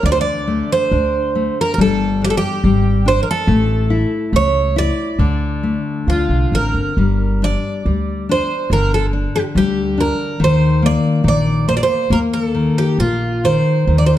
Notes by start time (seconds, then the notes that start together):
0.03 D2 D3 D5
0.12 C5
0.21 D5
0.47 A3
0.72 C5
0.91 D2 D4
1.35 A3
1.61 A#4
1.74 A#4
1.78 G1 G3 A4
2.22 D4 G4
2.30 A4
2.37 G4
2.64 G#1 G3
3.06 D4 C5
3.23 A#4
3.31 A4
3.47 A1 A3
3.90 E4
4.33 C#2 A3 C#5
4.76 E4 D5
5.19 D2 D3
5.63 A3
6.07 D2 F4
6.29 C2
6.52 A1 C4 A#4
6.74 G1
6.97 G1 G3
7.42 D4 D5
7.85 D2 G3
8.29 D4 C5
8.70 G1 D3 A#4
8.94 A4
9.13 D4
9.36 G4
9.55 D2 G3 G4
9.98 D4 A#4
10.40 D#2 D#3
10.44 C5
10.82 A#3 D5
11.24 A#1 D#3
11.28 D5
11.68 A#3 C5
11.77 D5
11.83 C5
12.10 D#2 A#3 A#4
12.33 A#4
12.44 A4
12.55 D#3
12.78 G4
12.98 A#1 A#3 F4
13.44 D#3 C5
13.87 D#2 D#3
13.98 D5
14.06 C5